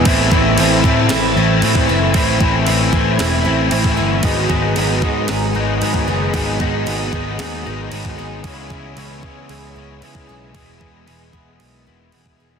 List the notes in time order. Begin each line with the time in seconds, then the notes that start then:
Already playing: E5
0.05 A1 A2 E3 A3 C4 E4 A5, kick, crash
0.31 A1 A3 C4 E4, kick
0.58 A1 A2 E3 A3 C4 E4, crash
0.83 A2 A3 C4 E4, kick
1.09 A1 A2 E3 C4 E4, snare, crash
1.36 A1 A3 C4 E4
1.61 A2 E3 A3 C4 E4, crash
1.75 kick, snare
1.87 F#1 C4 E4 B4
2.13 A1 A2 E3 A3 C4 E4 G#5, kick, crash
2.40 A1 C4 E4, kick
2.44 A3
2.65 A1 A2 E3 A3 C4 E4, crash
2.92 A1 A3 C4 E4, kick
3.17 E1 A2 E3 C4 E4, snare, crash
3.45 A1 A3 C4 E4
3.70 A1 E3 A3 C4 E4, crash
3.84 kick, snare
3.97 G1 B3 C4 E4 B4
4.22 G#1 G#2 D#3 F#3 G#3 B3 D#4 G#4 D#5 F#5 B5, kick, crash
4.49 G#1 F#3 G#3 B3 D#4 G#4, kick
4.76 G#1 G#2 D#3 F#3 G#3 B3 D#4 G#4, crash
5.02 G#2 F#3 G#3 B3 D#4 G#4, kick
5.28 G#1 G#2 D#3 F#3 B3 D#4 G#4, snare, crash
5.55 G#1 F#3 G#3 B3 D#4
5.81 G#2 D#3 F#3 G#3 B3 D#4 G#4, crash
5.94 kick
6.07 F#1 F#3 B3 D#4 G#4
6.34 G#1 G#2 D#3 F#3 G#3 B3 D#4 G#4, kick, crash
6.59 G#1 F#3 G#3 B3 D#4 G#4, kick
6.86 G#1 G#2 D#3 F#3 G#3 B3 D#4 G#4, crash
7.13 G#1 F#3 G#3 B3 D#4 G#4, kick
7.38 D#2 G#2 D#3 F#3 B3 D#4 G#4, snare, crash
7.66 G#1 F#3 G#3 B3 D#4
7.92 G#1 D#3 F#3 G#3 B3 D#4 G#4, crash
8.05 kick, snare
8.18 G#1 F#3 B3 D#4 G#4
8.44 C#2 C#3 E3 G#3 B3 C#4 E4 G#4 C#5 E5, kick, crash
8.70 C#2 G#3 B3 C#4 E4 G#4, kick
8.97 C#2 C#3 E3 G#3 B3 C#4 E4 G#4, crash
9.22 C#3 G#3 B3 C#4 E4 G#4, kick
9.49 C#2 C#3 E3 G#3 B3 E4 G#4, crash
9.75 C#2 G#3 B3 C#4 E4
10.02 C#3 E3 G#3 B3 C#4 E4 G#4, crash
10.15 kick
10.27 B1 G#3 B3 G#4
10.53 E1 E2 B2 E3 G#3 B3 E4 G#4 D#5, kick, crash
10.79 E1 G#3 B3 E4 G#4, kick
11.07 E1 E3 G#3 B3 E4 G#4, crash
11.33 E1 G#3 B3 E4 G#4, kick
11.59 B1 E2 B2 D#3 G#3 B3 G#4, crash
11.86 E1 G#3 B3 E4
12.12 E1 E3 G#3 B3 E4 G#4, crash
12.26 kick
12.38 E1 D#3 G#3 B3 G#4